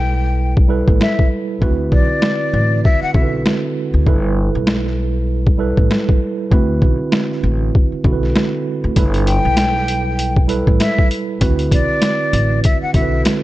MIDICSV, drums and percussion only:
0, 0, Header, 1, 2, 480
1, 0, Start_track
1, 0, Key_signature, 1, "major"
1, 0, Tempo, 612245
1, 1268, Time_signature, 4, 2, 24, 8
1, 10531, End_track
2, 0, Start_track
2, 0, Title_t, "Drums"
2, 446, Note_on_c, 9, 36, 97
2, 525, Note_off_c, 9, 36, 0
2, 687, Note_on_c, 9, 36, 99
2, 765, Note_off_c, 9, 36, 0
2, 791, Note_on_c, 9, 40, 92
2, 798, Note_on_c, 9, 38, 110
2, 869, Note_off_c, 9, 40, 0
2, 876, Note_off_c, 9, 38, 0
2, 933, Note_on_c, 9, 36, 85
2, 1011, Note_off_c, 9, 36, 0
2, 1268, Note_on_c, 9, 36, 114
2, 1346, Note_off_c, 9, 36, 0
2, 1505, Note_on_c, 9, 36, 88
2, 1583, Note_off_c, 9, 36, 0
2, 1741, Note_on_c, 9, 40, 97
2, 1748, Note_on_c, 9, 38, 119
2, 1820, Note_off_c, 9, 40, 0
2, 1826, Note_off_c, 9, 38, 0
2, 2235, Note_on_c, 9, 36, 94
2, 2313, Note_off_c, 9, 36, 0
2, 2465, Note_on_c, 9, 36, 96
2, 2543, Note_off_c, 9, 36, 0
2, 2710, Note_on_c, 9, 40, 92
2, 2717, Note_on_c, 9, 38, 117
2, 2789, Note_off_c, 9, 40, 0
2, 2796, Note_off_c, 9, 38, 0
2, 3188, Note_on_c, 9, 36, 114
2, 3266, Note_off_c, 9, 36, 0
2, 3661, Note_on_c, 9, 40, 98
2, 3668, Note_on_c, 9, 38, 120
2, 3740, Note_off_c, 9, 40, 0
2, 3747, Note_off_c, 9, 38, 0
2, 3812, Note_on_c, 9, 38, 35
2, 3890, Note_off_c, 9, 38, 0
2, 4286, Note_on_c, 9, 36, 92
2, 4364, Note_off_c, 9, 36, 0
2, 4527, Note_on_c, 9, 36, 102
2, 4605, Note_off_c, 9, 36, 0
2, 4631, Note_on_c, 9, 40, 92
2, 4638, Note_on_c, 9, 38, 110
2, 4710, Note_off_c, 9, 40, 0
2, 4717, Note_off_c, 9, 38, 0
2, 4773, Note_on_c, 9, 36, 85
2, 4851, Note_off_c, 9, 36, 0
2, 5108, Note_on_c, 9, 36, 117
2, 5187, Note_off_c, 9, 36, 0
2, 5346, Note_on_c, 9, 36, 92
2, 5424, Note_off_c, 9, 36, 0
2, 5583, Note_on_c, 9, 40, 95
2, 5590, Note_on_c, 9, 38, 123
2, 5662, Note_off_c, 9, 40, 0
2, 5668, Note_off_c, 9, 38, 0
2, 5734, Note_on_c, 9, 38, 36
2, 5812, Note_off_c, 9, 38, 0
2, 6076, Note_on_c, 9, 36, 93
2, 6154, Note_off_c, 9, 36, 0
2, 6306, Note_on_c, 9, 36, 95
2, 6385, Note_off_c, 9, 36, 0
2, 6453, Note_on_c, 9, 38, 37
2, 6531, Note_off_c, 9, 38, 0
2, 6551, Note_on_c, 9, 40, 92
2, 6558, Note_on_c, 9, 38, 115
2, 6629, Note_off_c, 9, 40, 0
2, 6636, Note_off_c, 9, 38, 0
2, 7026, Note_on_c, 9, 42, 85
2, 7028, Note_on_c, 9, 36, 116
2, 7104, Note_off_c, 9, 42, 0
2, 7106, Note_off_c, 9, 36, 0
2, 7166, Note_on_c, 9, 42, 53
2, 7244, Note_off_c, 9, 42, 0
2, 7269, Note_on_c, 9, 42, 78
2, 7347, Note_off_c, 9, 42, 0
2, 7501, Note_on_c, 9, 40, 95
2, 7501, Note_on_c, 9, 42, 92
2, 7508, Note_on_c, 9, 38, 122
2, 7579, Note_off_c, 9, 42, 0
2, 7580, Note_off_c, 9, 40, 0
2, 7587, Note_off_c, 9, 38, 0
2, 7653, Note_on_c, 9, 38, 35
2, 7732, Note_off_c, 9, 38, 0
2, 7748, Note_on_c, 9, 42, 76
2, 7826, Note_off_c, 9, 42, 0
2, 7988, Note_on_c, 9, 42, 87
2, 8066, Note_off_c, 9, 42, 0
2, 8126, Note_on_c, 9, 36, 95
2, 8204, Note_off_c, 9, 36, 0
2, 8224, Note_on_c, 9, 42, 67
2, 8302, Note_off_c, 9, 42, 0
2, 8367, Note_on_c, 9, 36, 100
2, 8445, Note_off_c, 9, 36, 0
2, 8467, Note_on_c, 9, 42, 90
2, 8471, Note_on_c, 9, 40, 88
2, 8478, Note_on_c, 9, 38, 111
2, 8546, Note_off_c, 9, 42, 0
2, 8549, Note_off_c, 9, 40, 0
2, 8556, Note_off_c, 9, 38, 0
2, 8612, Note_on_c, 9, 36, 84
2, 8691, Note_off_c, 9, 36, 0
2, 8710, Note_on_c, 9, 42, 72
2, 8788, Note_off_c, 9, 42, 0
2, 8946, Note_on_c, 9, 42, 84
2, 8948, Note_on_c, 9, 36, 113
2, 9024, Note_off_c, 9, 42, 0
2, 9026, Note_off_c, 9, 36, 0
2, 9086, Note_on_c, 9, 42, 54
2, 9164, Note_off_c, 9, 42, 0
2, 9185, Note_on_c, 9, 36, 94
2, 9188, Note_on_c, 9, 42, 80
2, 9263, Note_off_c, 9, 36, 0
2, 9266, Note_off_c, 9, 42, 0
2, 9421, Note_on_c, 9, 40, 96
2, 9421, Note_on_c, 9, 42, 92
2, 9428, Note_on_c, 9, 38, 119
2, 9499, Note_off_c, 9, 42, 0
2, 9500, Note_off_c, 9, 40, 0
2, 9507, Note_off_c, 9, 38, 0
2, 9669, Note_on_c, 9, 42, 72
2, 9748, Note_off_c, 9, 42, 0
2, 9908, Note_on_c, 9, 42, 86
2, 9916, Note_on_c, 9, 36, 93
2, 9987, Note_off_c, 9, 42, 0
2, 9995, Note_off_c, 9, 36, 0
2, 10146, Note_on_c, 9, 42, 68
2, 10147, Note_on_c, 9, 36, 96
2, 10224, Note_off_c, 9, 42, 0
2, 10225, Note_off_c, 9, 36, 0
2, 10390, Note_on_c, 9, 42, 92
2, 10393, Note_on_c, 9, 40, 95
2, 10400, Note_on_c, 9, 38, 114
2, 10468, Note_off_c, 9, 42, 0
2, 10471, Note_off_c, 9, 40, 0
2, 10478, Note_off_c, 9, 38, 0
2, 10531, End_track
0, 0, End_of_file